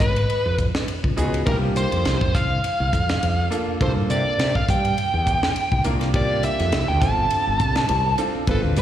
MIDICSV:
0, 0, Header, 1, 6, 480
1, 0, Start_track
1, 0, Tempo, 584624
1, 1204, Time_signature, 4, 2, 24, 8
1, 7241, End_track
2, 0, Start_track
2, 0, Title_t, "Lead electric guitar"
2, 0, Program_c, 0, 29
2, 4, Note_on_c, 0, 71, 74
2, 451, Note_off_c, 0, 71, 0
2, 1201, Note_on_c, 0, 70, 83
2, 1266, Note_off_c, 0, 70, 0
2, 1452, Note_on_c, 0, 72, 84
2, 1927, Note_on_c, 0, 77, 83
2, 1942, Note_off_c, 0, 72, 0
2, 2853, Note_off_c, 0, 77, 0
2, 3140, Note_on_c, 0, 72, 82
2, 3203, Note_off_c, 0, 72, 0
2, 3372, Note_on_c, 0, 74, 89
2, 3743, Note_off_c, 0, 74, 0
2, 3747, Note_on_c, 0, 77, 86
2, 3843, Note_off_c, 0, 77, 0
2, 3857, Note_on_c, 0, 79, 87
2, 4778, Note_off_c, 0, 79, 0
2, 5058, Note_on_c, 0, 74, 84
2, 5288, Note_off_c, 0, 74, 0
2, 5291, Note_on_c, 0, 76, 92
2, 5652, Note_on_c, 0, 79, 87
2, 5670, Note_off_c, 0, 76, 0
2, 5755, Note_off_c, 0, 79, 0
2, 5763, Note_on_c, 0, 81, 91
2, 6691, Note_off_c, 0, 81, 0
2, 6988, Note_on_c, 0, 69, 81
2, 7049, Note_off_c, 0, 69, 0
2, 7215, Note_on_c, 0, 71, 99
2, 7241, Note_off_c, 0, 71, 0
2, 7241, End_track
3, 0, Start_track
3, 0, Title_t, "Grand piano"
3, 0, Program_c, 1, 0
3, 957, Note_on_c, 1, 59, 79
3, 961, Note_on_c, 1, 66, 73
3, 962, Note_on_c, 1, 63, 74
3, 965, Note_on_c, 1, 68, 93
3, 1141, Note_off_c, 1, 59, 0
3, 1143, Note_off_c, 1, 63, 0
3, 1143, Note_off_c, 1, 66, 0
3, 1145, Note_off_c, 1, 68, 0
3, 1202, Note_on_c, 1, 58, 66
3, 1203, Note_on_c, 1, 65, 62
3, 1204, Note_on_c, 1, 62, 63
3, 1211, Note_on_c, 1, 67, 72
3, 1902, Note_off_c, 1, 58, 0
3, 1903, Note_off_c, 1, 65, 0
3, 1904, Note_off_c, 1, 62, 0
3, 1907, Note_off_c, 1, 67, 0
3, 2878, Note_on_c, 1, 58, 81
3, 2879, Note_on_c, 1, 65, 73
3, 2882, Note_on_c, 1, 62, 72
3, 2882, Note_on_c, 1, 69, 86
3, 3062, Note_off_c, 1, 58, 0
3, 3062, Note_off_c, 1, 65, 0
3, 3064, Note_off_c, 1, 62, 0
3, 3064, Note_off_c, 1, 69, 0
3, 3124, Note_on_c, 1, 58, 69
3, 3124, Note_on_c, 1, 65, 59
3, 3125, Note_on_c, 1, 62, 59
3, 3130, Note_on_c, 1, 69, 76
3, 3824, Note_off_c, 1, 58, 0
3, 3824, Note_off_c, 1, 62, 0
3, 3824, Note_off_c, 1, 65, 0
3, 3827, Note_off_c, 1, 69, 0
3, 4798, Note_on_c, 1, 58, 84
3, 4799, Note_on_c, 1, 62, 72
3, 4803, Note_on_c, 1, 70, 93
3, 4804, Note_on_c, 1, 65, 74
3, 4982, Note_off_c, 1, 58, 0
3, 4983, Note_off_c, 1, 62, 0
3, 4985, Note_off_c, 1, 65, 0
3, 4985, Note_off_c, 1, 70, 0
3, 5035, Note_on_c, 1, 58, 69
3, 5036, Note_on_c, 1, 62, 62
3, 5038, Note_on_c, 1, 67, 76
3, 5039, Note_on_c, 1, 65, 64
3, 5739, Note_off_c, 1, 58, 0
3, 5740, Note_off_c, 1, 62, 0
3, 5741, Note_off_c, 1, 67, 0
3, 5742, Note_off_c, 1, 65, 0
3, 5759, Note_on_c, 1, 60, 70
3, 5761, Note_on_c, 1, 62, 64
3, 5761, Note_on_c, 1, 65, 65
3, 5762, Note_on_c, 1, 69, 78
3, 6534, Note_off_c, 1, 60, 0
3, 6535, Note_off_c, 1, 62, 0
3, 6536, Note_off_c, 1, 65, 0
3, 6536, Note_off_c, 1, 69, 0
3, 6716, Note_on_c, 1, 60, 81
3, 6716, Note_on_c, 1, 62, 75
3, 6718, Note_on_c, 1, 65, 72
3, 6720, Note_on_c, 1, 69, 92
3, 6901, Note_off_c, 1, 60, 0
3, 6901, Note_off_c, 1, 62, 0
3, 6902, Note_off_c, 1, 65, 0
3, 6903, Note_off_c, 1, 69, 0
3, 6956, Note_on_c, 1, 60, 70
3, 6960, Note_on_c, 1, 65, 65
3, 6961, Note_on_c, 1, 62, 62
3, 6963, Note_on_c, 1, 71, 76
3, 7241, Note_off_c, 1, 60, 0
3, 7241, Note_off_c, 1, 62, 0
3, 7241, Note_off_c, 1, 65, 0
3, 7241, Note_off_c, 1, 71, 0
3, 7241, End_track
4, 0, Start_track
4, 0, Title_t, "Fretless electric bass"
4, 0, Program_c, 2, 35
4, 3, Note_on_c, 2, 32, 81
4, 206, Note_off_c, 2, 32, 0
4, 374, Note_on_c, 2, 41, 78
4, 577, Note_off_c, 2, 41, 0
4, 857, Note_on_c, 2, 37, 79
4, 948, Note_off_c, 2, 37, 0
4, 969, Note_on_c, 2, 37, 75
4, 1169, Note_off_c, 2, 37, 0
4, 1206, Note_on_c, 2, 36, 97
4, 1517, Note_off_c, 2, 36, 0
4, 1580, Note_on_c, 2, 41, 89
4, 1669, Note_off_c, 2, 41, 0
4, 1687, Note_on_c, 2, 36, 86
4, 1796, Note_off_c, 2, 36, 0
4, 1817, Note_on_c, 2, 41, 75
4, 1908, Note_off_c, 2, 41, 0
4, 1926, Note_on_c, 2, 36, 81
4, 2127, Note_off_c, 2, 36, 0
4, 2298, Note_on_c, 2, 36, 84
4, 2388, Note_off_c, 2, 36, 0
4, 2405, Note_on_c, 2, 41, 76
4, 2607, Note_off_c, 2, 41, 0
4, 2650, Note_on_c, 2, 41, 92
4, 2850, Note_off_c, 2, 41, 0
4, 3127, Note_on_c, 2, 36, 91
4, 3236, Note_off_c, 2, 36, 0
4, 3252, Note_on_c, 2, 43, 73
4, 3345, Note_off_c, 2, 43, 0
4, 3359, Note_on_c, 2, 48, 86
4, 3472, Note_off_c, 2, 48, 0
4, 3598, Note_on_c, 2, 48, 84
4, 3711, Note_off_c, 2, 48, 0
4, 3849, Note_on_c, 2, 43, 77
4, 4049, Note_off_c, 2, 43, 0
4, 4217, Note_on_c, 2, 40, 82
4, 4418, Note_off_c, 2, 40, 0
4, 4697, Note_on_c, 2, 36, 77
4, 4788, Note_off_c, 2, 36, 0
4, 4809, Note_on_c, 2, 36, 79
4, 5321, Note_off_c, 2, 36, 0
4, 5419, Note_on_c, 2, 41, 96
4, 5509, Note_off_c, 2, 41, 0
4, 5526, Note_on_c, 2, 36, 89
4, 5636, Note_off_c, 2, 36, 0
4, 5656, Note_on_c, 2, 38, 79
4, 5748, Note_off_c, 2, 38, 0
4, 5761, Note_on_c, 2, 31, 81
4, 5965, Note_off_c, 2, 31, 0
4, 6134, Note_on_c, 2, 31, 84
4, 6226, Note_off_c, 2, 31, 0
4, 6238, Note_on_c, 2, 36, 82
4, 6443, Note_off_c, 2, 36, 0
4, 6481, Note_on_c, 2, 36, 99
4, 6685, Note_off_c, 2, 36, 0
4, 6962, Note_on_c, 2, 31, 103
4, 7073, Note_off_c, 2, 31, 0
4, 7097, Note_on_c, 2, 38, 76
4, 7188, Note_off_c, 2, 38, 0
4, 7202, Note_on_c, 2, 43, 92
4, 7241, Note_off_c, 2, 43, 0
4, 7241, End_track
5, 0, Start_track
5, 0, Title_t, "Muted fretless electric bass strokes"
5, 3019, Note_on_c, 9, 29, 32
5, 3101, Note_off_c, 9, 29, 0
5, 6852, Note_on_c, 9, 29, 35
5, 6935, Note_off_c, 9, 29, 0
5, 7241, End_track
6, 0, Start_track
6, 0, Title_t, "Drums"
6, 1, Note_on_c, 9, 36, 85
6, 3, Note_on_c, 9, 44, 81
6, 3, Note_on_c, 9, 51, 58
6, 83, Note_off_c, 9, 36, 0
6, 85, Note_off_c, 9, 44, 0
6, 85, Note_off_c, 9, 51, 0
6, 134, Note_on_c, 9, 51, 58
6, 216, Note_off_c, 9, 51, 0
6, 243, Note_on_c, 9, 51, 70
6, 325, Note_off_c, 9, 51, 0
6, 479, Note_on_c, 9, 44, 77
6, 479, Note_on_c, 9, 51, 55
6, 480, Note_on_c, 9, 36, 68
6, 562, Note_off_c, 9, 36, 0
6, 562, Note_off_c, 9, 44, 0
6, 562, Note_off_c, 9, 51, 0
6, 614, Note_on_c, 9, 38, 104
6, 696, Note_off_c, 9, 38, 0
6, 723, Note_on_c, 9, 51, 82
6, 805, Note_off_c, 9, 51, 0
6, 854, Note_on_c, 9, 36, 67
6, 936, Note_off_c, 9, 36, 0
6, 964, Note_on_c, 9, 44, 84
6, 964, Note_on_c, 9, 51, 61
6, 1046, Note_off_c, 9, 44, 0
6, 1046, Note_off_c, 9, 51, 0
6, 1100, Note_on_c, 9, 51, 61
6, 1182, Note_off_c, 9, 51, 0
6, 1204, Note_on_c, 9, 36, 103
6, 1204, Note_on_c, 9, 51, 86
6, 1286, Note_off_c, 9, 36, 0
6, 1287, Note_off_c, 9, 51, 0
6, 1444, Note_on_c, 9, 44, 82
6, 1444, Note_on_c, 9, 51, 60
6, 1526, Note_off_c, 9, 44, 0
6, 1526, Note_off_c, 9, 51, 0
6, 1578, Note_on_c, 9, 51, 65
6, 1660, Note_off_c, 9, 51, 0
6, 1685, Note_on_c, 9, 51, 86
6, 1689, Note_on_c, 9, 38, 100
6, 1767, Note_off_c, 9, 51, 0
6, 1771, Note_off_c, 9, 38, 0
6, 1816, Note_on_c, 9, 36, 74
6, 1898, Note_off_c, 9, 36, 0
6, 1926, Note_on_c, 9, 36, 84
6, 1929, Note_on_c, 9, 44, 81
6, 1929, Note_on_c, 9, 51, 66
6, 1933, Note_on_c, 9, 38, 32
6, 2009, Note_off_c, 9, 36, 0
6, 2011, Note_off_c, 9, 44, 0
6, 2011, Note_off_c, 9, 51, 0
6, 2015, Note_off_c, 9, 38, 0
6, 2168, Note_on_c, 9, 51, 83
6, 2250, Note_off_c, 9, 51, 0
6, 2406, Note_on_c, 9, 36, 73
6, 2408, Note_on_c, 9, 44, 79
6, 2408, Note_on_c, 9, 51, 60
6, 2488, Note_off_c, 9, 36, 0
6, 2490, Note_off_c, 9, 44, 0
6, 2490, Note_off_c, 9, 51, 0
6, 2538, Note_on_c, 9, 51, 59
6, 2542, Note_on_c, 9, 38, 102
6, 2620, Note_off_c, 9, 51, 0
6, 2624, Note_off_c, 9, 38, 0
6, 2649, Note_on_c, 9, 51, 83
6, 2731, Note_off_c, 9, 51, 0
6, 2888, Note_on_c, 9, 44, 85
6, 2888, Note_on_c, 9, 51, 61
6, 2970, Note_off_c, 9, 44, 0
6, 2970, Note_off_c, 9, 51, 0
6, 3126, Note_on_c, 9, 36, 100
6, 3127, Note_on_c, 9, 51, 79
6, 3208, Note_off_c, 9, 36, 0
6, 3209, Note_off_c, 9, 51, 0
6, 3365, Note_on_c, 9, 44, 80
6, 3365, Note_on_c, 9, 51, 56
6, 3448, Note_off_c, 9, 44, 0
6, 3448, Note_off_c, 9, 51, 0
6, 3607, Note_on_c, 9, 51, 78
6, 3611, Note_on_c, 9, 38, 104
6, 3689, Note_off_c, 9, 51, 0
6, 3693, Note_off_c, 9, 38, 0
6, 3738, Note_on_c, 9, 36, 72
6, 3820, Note_off_c, 9, 36, 0
6, 3847, Note_on_c, 9, 36, 89
6, 3850, Note_on_c, 9, 44, 81
6, 3850, Note_on_c, 9, 51, 59
6, 3929, Note_off_c, 9, 36, 0
6, 3932, Note_off_c, 9, 44, 0
6, 3932, Note_off_c, 9, 51, 0
6, 3980, Note_on_c, 9, 51, 57
6, 4062, Note_off_c, 9, 51, 0
6, 4086, Note_on_c, 9, 51, 74
6, 4169, Note_off_c, 9, 51, 0
6, 4325, Note_on_c, 9, 36, 67
6, 4325, Note_on_c, 9, 44, 78
6, 4325, Note_on_c, 9, 51, 55
6, 4407, Note_off_c, 9, 36, 0
6, 4407, Note_off_c, 9, 44, 0
6, 4407, Note_off_c, 9, 51, 0
6, 4459, Note_on_c, 9, 38, 100
6, 4541, Note_off_c, 9, 38, 0
6, 4563, Note_on_c, 9, 51, 79
6, 4645, Note_off_c, 9, 51, 0
6, 4694, Note_on_c, 9, 36, 65
6, 4776, Note_off_c, 9, 36, 0
6, 4797, Note_on_c, 9, 44, 78
6, 4797, Note_on_c, 9, 51, 60
6, 4880, Note_off_c, 9, 44, 0
6, 4880, Note_off_c, 9, 51, 0
6, 4934, Note_on_c, 9, 51, 59
6, 4938, Note_on_c, 9, 38, 30
6, 5016, Note_off_c, 9, 51, 0
6, 5020, Note_off_c, 9, 38, 0
6, 5040, Note_on_c, 9, 51, 78
6, 5042, Note_on_c, 9, 36, 99
6, 5122, Note_off_c, 9, 51, 0
6, 5124, Note_off_c, 9, 36, 0
6, 5280, Note_on_c, 9, 44, 84
6, 5280, Note_on_c, 9, 51, 61
6, 5362, Note_off_c, 9, 44, 0
6, 5362, Note_off_c, 9, 51, 0
6, 5415, Note_on_c, 9, 51, 66
6, 5419, Note_on_c, 9, 38, 30
6, 5497, Note_off_c, 9, 51, 0
6, 5501, Note_off_c, 9, 38, 0
6, 5520, Note_on_c, 9, 51, 84
6, 5524, Note_on_c, 9, 38, 108
6, 5602, Note_off_c, 9, 51, 0
6, 5606, Note_off_c, 9, 38, 0
6, 5761, Note_on_c, 9, 36, 109
6, 5761, Note_on_c, 9, 44, 86
6, 5761, Note_on_c, 9, 51, 63
6, 5766, Note_on_c, 9, 38, 33
6, 5843, Note_off_c, 9, 36, 0
6, 5844, Note_off_c, 9, 44, 0
6, 5844, Note_off_c, 9, 51, 0
6, 5848, Note_off_c, 9, 38, 0
6, 5997, Note_on_c, 9, 51, 84
6, 6079, Note_off_c, 9, 51, 0
6, 6236, Note_on_c, 9, 44, 78
6, 6236, Note_on_c, 9, 51, 58
6, 6239, Note_on_c, 9, 36, 73
6, 6318, Note_off_c, 9, 44, 0
6, 6318, Note_off_c, 9, 51, 0
6, 6321, Note_off_c, 9, 36, 0
6, 6367, Note_on_c, 9, 51, 65
6, 6371, Note_on_c, 9, 38, 97
6, 6449, Note_off_c, 9, 51, 0
6, 6453, Note_off_c, 9, 38, 0
6, 6476, Note_on_c, 9, 51, 79
6, 6558, Note_off_c, 9, 51, 0
6, 6715, Note_on_c, 9, 44, 79
6, 6715, Note_on_c, 9, 51, 62
6, 6797, Note_off_c, 9, 44, 0
6, 6797, Note_off_c, 9, 51, 0
6, 6956, Note_on_c, 9, 51, 82
6, 6958, Note_on_c, 9, 36, 103
6, 7038, Note_off_c, 9, 51, 0
6, 7040, Note_off_c, 9, 36, 0
6, 7196, Note_on_c, 9, 44, 80
6, 7196, Note_on_c, 9, 51, 60
6, 7241, Note_off_c, 9, 44, 0
6, 7241, Note_off_c, 9, 51, 0
6, 7241, End_track
0, 0, End_of_file